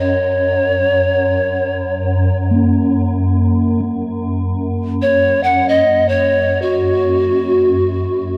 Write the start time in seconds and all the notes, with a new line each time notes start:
Already playing: F#2
0.00 C#5
2.51 A#3
2.56 C#4
3.81 A#3 C#4
5.02 C#5
5.43 F#5
5.68 D#5
6.09 C#5
6.62 F#4